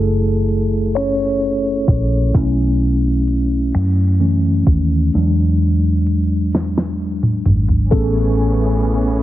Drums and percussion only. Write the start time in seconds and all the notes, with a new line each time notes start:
0.49 closed hi-hat
0.94 finger snap, closed hi-hat
1.88 kick, closed hi-hat
2.34 kick, closed hi-hat
3.28 closed hi-hat
3.73 finger snap, closed hi-hat
4.66 kick, closed hi-hat
5.13 closed hi-hat
6.07 closed hi-hat
6.53 snare, closed hi-hat
6.78 snare
7.23 mid tom
7.45 closed hi-hat, mid tom
7.68 floor tom
7.91 kick, closed hi-hat
8.85 closed hi-hat